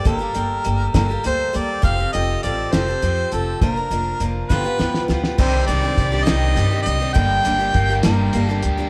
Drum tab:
CC |------------|------------|------------|x-----------|
HH |x-x-x-x-x-x-|x-x-x-x-x-x-|x-x-x-------|--x-x-x-x-x-|
SD |------o-----|------o-----|------o-oooo|------o-----|
BD |o-----o-----|o-----------|o-----o-----|o---o-------|

CC |------------|
HH |x-x-x-x-x-x-|
SD |------o-----|
BD |o---o-------|